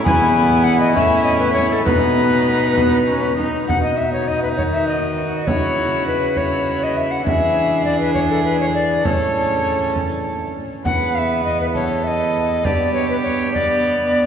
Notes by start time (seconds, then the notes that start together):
0.04 E2 B3 E4 G#5, frame drum
0.64 F#5
0.80 D#5
0.95 A2 C#4 E4 E5, frame drum
1.25 D#5
1.39 B4
1.53 C#5, frame drum
1.71 A4
1.85 B2 B3 D#4 B4, frame drum
2.76 B3, frame drum
3.08 C#4
3.37 D#4, frame drum
3.67 B2 D#4 F#5, frame drum
3.83 D#5
3.97 E5
4.13 C#5
4.28 D#5
4.43 B4
4.57 D#3 F#4 C#5, frame drum
4.73 E5
4.87 D#5
5.47 C#3 E4 C#5, frame drum
6.07 B4
6.36 E4 C#5, frame drum
6.83 D#5
6.97 E5
7.11 F#5
7.25 E3 D4 G#4 E5, frame drum
7.85 D5
8.00 B4
8.14 C#5, frame drum
8.30 A4
8.43 B4
8.60 C#5
8.74 D5
9.04 A2 C#4 A4 C#5, frame drum
9.96 frame drum
10.85 E2 B3 B4 F#5, frame drum
11.15 E5 F5
11.45 D#5
11.60 B4
11.75 A4 C#5, frame drum
12.04 D#5 E5
12.65 G2 B3 G4 D5, frame drum
12.93 C#5
13.10 B4
13.23 C#5
13.53 B3 D5, frame drum